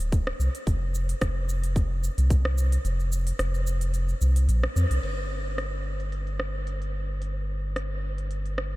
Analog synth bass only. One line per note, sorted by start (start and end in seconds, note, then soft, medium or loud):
0.00 0.32 D1 medium
0.40 0.49 C2 medium
0.67 1.14 F1 loud
1.21 2.09 F1 loud
2.18 2.78 C2 medium
2.85 3.32 F1 loud
3.39 4.14 F1 loud
4.21 4.48 C2 medium
4.48 4.67 A#1 medium
4.76 4.85 F2 medium
4.91 4.99 C2 medium
5.03 8.76 G1 medium